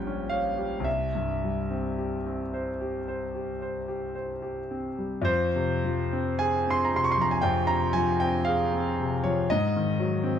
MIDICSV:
0, 0, Header, 1, 2, 480
1, 0, Start_track
1, 0, Key_signature, -4, "minor"
1, 0, Tempo, 1045296
1, 394, Time_signature, 4, 2, 24, 8
1, 394, Tempo, 1132075
1, 874, Tempo, 1081081
1, 1834, Tempo, 1123596
1, 2794, Tempo, 1016949
1, 4679, End_track
2, 0, Start_track
2, 0, Title_t, "Grand piano"
2, 0, Program_c, 0, 0
2, 0, Control_c, 0, 64, 127
2, 0, Note_on_c, 0, 34, 69
2, 0, Note_on_c, 0, 46, 47
2, 0, Note_on_c, 0, 55, 54
2, 0, Note_on_c, 0, 61, 52
2, 0, Note_on_c, 0, 67, 48
2, 0, Note_on_c, 0, 79, 97
2, 32, Note_off_c, 0, 61, 0
2, 32, Note_on_c, 0, 61, 53
2, 96, Note_off_c, 0, 67, 0
2, 135, Note_on_c, 0, 77, 78
2, 141, Note_off_c, 0, 79, 0
2, 143, Note_on_c, 0, 73, 52
2, 216, Note_off_c, 0, 61, 0
2, 264, Note_on_c, 0, 67, 47
2, 340, Note_off_c, 0, 73, 0
2, 367, Note_on_c, 0, 36, 57
2, 376, Note_off_c, 0, 34, 0
2, 388, Note_on_c, 0, 76, 68
2, 390, Note_off_c, 0, 77, 0
2, 394, Note_off_c, 0, 67, 0
2, 400, Control_c, 0, 64, 0
2, 402, Note_off_c, 0, 55, 0
2, 405, Note_off_c, 0, 46, 0
2, 480, Control_c, 0, 64, 127
2, 518, Note_on_c, 0, 43, 43
2, 641, Note_on_c, 0, 55, 45
2, 711, Note_off_c, 0, 43, 0
2, 754, Note_on_c, 0, 60, 42
2, 829, Note_off_c, 0, 55, 0
2, 870, Note_on_c, 0, 67, 46
2, 944, Note_off_c, 0, 60, 0
2, 996, Note_on_c, 0, 60, 44
2, 1065, Note_off_c, 0, 67, 0
2, 1117, Note_on_c, 0, 72, 44
2, 1188, Note_off_c, 0, 60, 0
2, 1236, Note_on_c, 0, 67, 43
2, 1310, Note_off_c, 0, 72, 0
2, 1358, Note_on_c, 0, 72, 47
2, 1430, Note_off_c, 0, 67, 0
2, 1477, Note_on_c, 0, 67, 40
2, 1550, Note_off_c, 0, 72, 0
2, 1598, Note_on_c, 0, 72, 46
2, 1668, Note_off_c, 0, 67, 0
2, 1714, Note_on_c, 0, 67, 42
2, 1787, Note_off_c, 0, 72, 0
2, 1831, Note_off_c, 0, 76, 0
2, 1834, Note_on_c, 0, 72, 40
2, 1903, Note_off_c, 0, 67, 0
2, 1950, Note_on_c, 0, 67, 42
2, 2022, Note_off_c, 0, 72, 0
2, 2072, Note_on_c, 0, 60, 40
2, 2144, Note_off_c, 0, 67, 0
2, 2189, Note_on_c, 0, 55, 37
2, 2267, Note_off_c, 0, 60, 0
2, 2286, Note_off_c, 0, 36, 0
2, 2288, Note_on_c, 0, 41, 69
2, 2302, Note_on_c, 0, 72, 92
2, 2314, Note_off_c, 0, 55, 0
2, 2324, Control_c, 0, 64, 0
2, 2393, Control_c, 0, 64, 127
2, 2433, Note_on_c, 0, 48, 55
2, 2557, Note_on_c, 0, 53, 53
2, 2629, Note_off_c, 0, 48, 0
2, 2678, Note_on_c, 0, 60, 53
2, 2748, Note_off_c, 0, 53, 0
2, 2788, Note_off_c, 0, 72, 0
2, 2789, Note_on_c, 0, 80, 95
2, 2795, Note_on_c, 0, 68, 61
2, 2870, Note_off_c, 0, 60, 0
2, 2922, Note_on_c, 0, 60, 53
2, 2938, Note_on_c, 0, 84, 82
2, 2941, Note_off_c, 0, 80, 0
2, 2992, Note_off_c, 0, 68, 0
2, 3006, Note_on_c, 0, 82, 74
2, 3010, Note_off_c, 0, 84, 0
2, 3042, Note_on_c, 0, 48, 56
2, 3059, Note_off_c, 0, 82, 0
2, 3059, Note_on_c, 0, 84, 73
2, 3097, Note_on_c, 0, 85, 81
2, 3101, Note_off_c, 0, 84, 0
2, 3112, Note_off_c, 0, 60, 0
2, 3132, Note_on_c, 0, 84, 76
2, 3136, Note_off_c, 0, 85, 0
2, 3162, Note_on_c, 0, 53, 53
2, 3175, Note_off_c, 0, 84, 0
2, 3178, Note_on_c, 0, 82, 74
2, 3225, Note_off_c, 0, 82, 0
2, 3225, Note_on_c, 0, 80, 74
2, 3230, Note_off_c, 0, 48, 0
2, 3243, Note_off_c, 0, 41, 0
2, 3273, Note_on_c, 0, 79, 100
2, 3276, Note_off_c, 0, 80, 0
2, 3281, Note_on_c, 0, 41, 64
2, 3350, Note_off_c, 0, 53, 0
2, 3394, Note_off_c, 0, 79, 0
2, 3394, Note_on_c, 0, 82, 93
2, 3402, Note_on_c, 0, 48, 51
2, 3515, Note_off_c, 0, 82, 0
2, 3517, Note_on_c, 0, 80, 95
2, 3524, Note_on_c, 0, 53, 53
2, 3592, Note_off_c, 0, 48, 0
2, 3638, Note_off_c, 0, 80, 0
2, 3644, Note_on_c, 0, 79, 92
2, 3650, Note_on_c, 0, 60, 54
2, 3714, Note_off_c, 0, 53, 0
2, 3760, Note_on_c, 0, 77, 86
2, 3762, Note_off_c, 0, 79, 0
2, 3770, Note_on_c, 0, 68, 56
2, 3839, Note_off_c, 0, 60, 0
2, 3899, Note_on_c, 0, 60, 58
2, 3960, Note_off_c, 0, 68, 0
2, 4022, Note_on_c, 0, 48, 55
2, 4086, Note_off_c, 0, 60, 0
2, 4126, Note_off_c, 0, 77, 0
2, 4133, Note_on_c, 0, 73, 84
2, 4139, Note_on_c, 0, 53, 53
2, 4207, Note_off_c, 0, 48, 0
2, 4229, Note_off_c, 0, 41, 0
2, 4250, Note_off_c, 0, 73, 0
2, 4253, Note_off_c, 0, 53, 0
2, 4253, Control_c, 0, 64, 0
2, 4257, Note_on_c, 0, 75, 100
2, 4265, Note_on_c, 0, 44, 66
2, 4322, Control_c, 0, 64, 127
2, 4382, Note_on_c, 0, 51, 57
2, 4491, Note_on_c, 0, 54, 61
2, 4560, Note_off_c, 0, 51, 0
2, 4604, Note_on_c, 0, 60, 61
2, 4672, Note_off_c, 0, 54, 0
2, 4679, Note_off_c, 0, 44, 0
2, 4679, Note_off_c, 0, 60, 0
2, 4679, Note_off_c, 0, 75, 0
2, 4679, End_track
0, 0, End_of_file